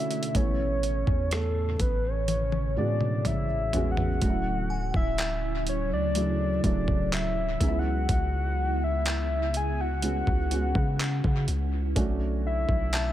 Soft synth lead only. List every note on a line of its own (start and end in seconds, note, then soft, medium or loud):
0.00 0.38 E5 loud
0.36 1.34 C#5 loud
1.33 1.83 A4 medium
1.81 2.07 B4 medium
2.05 2.77 C#5 medium
2.78 3.28 D5 medium
3.27 3.93 E5 medium
3.91 4.95 F#5 loud
4.96 5.64 E5 medium
5.69 5.91 C#5 medium
5.93 6.61 D5 medium
6.66 7.10 D5 medium
7.14 7.80 E5 loud
7.79 8.85 F#5 loud
8.84 9.58 E5 loud
9.57 9.82 G#5 loud
9.81 11.49 F#5 loud
12.47 13.13 E5 loud